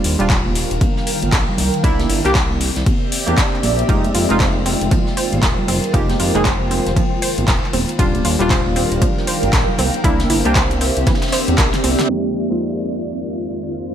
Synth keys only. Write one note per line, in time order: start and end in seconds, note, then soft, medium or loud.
0.00 0.16 G3 medium
0.00 0.16 D4 medium
0.00 0.16 F4 loud
0.19 1.56 G3 medium
0.19 1.57 D4 medium
0.19 1.58 F4 loud
1.83 2.21 A#3 medium
1.83 2.21 D4 medium
1.83 2.22 E4 loud
2.24 2.38 A#3 medium
2.24 2.38 D4 medium
2.24 2.38 G4 loud
3.26 3.86 A#3 medium
3.26 3.87 D4 medium
3.26 3.87 G4 medium
3.88 4.26 G#3 medium
3.88 4.26 A#3 medium
3.88 4.26 D#4 medium
3.88 4.27 G4 medium
4.29 5.91 G#3 medium
4.29 5.92 A#3 medium
4.29 5.92 D#4 medium
4.29 5.92 F4 loud
5.93 6.31 G#3 medium
5.93 6.31 A#3 medium
5.93 6.32 D#4 medium
5.93 6.32 G4 loud
6.35 6.48 G#3 medium
6.35 6.48 A#3 medium
6.35 6.48 D#4 medium
6.35 6.48 G#4 loud
7.99 8.36 G3 medium
7.99 8.37 D4 medium
7.99 8.37 F4 loud
8.39 9.77 G3 medium
8.39 9.77 D4 medium
8.39 9.78 F4 loud
10.04 10.42 A#3 loud
10.04 10.42 D4 medium
10.04 10.42 E4 loud
10.45 10.58 A#3 loud
10.45 10.58 D4 medium
10.45 10.59 G4 loud
12.09 12.47 F2 medium
12.09 12.47 G#3 medium
12.09 12.47 A#3 medium
12.09 12.47 C4 medium
12.09 12.47 D#4 medium
12.09 12.47 G4 medium
12.50 13.95 F2 medium
12.50 13.95 G#3 medium
12.50 13.95 A#3 medium
12.50 13.95 C4 medium
12.50 13.95 D#4 medium
12.50 13.95 F4 medium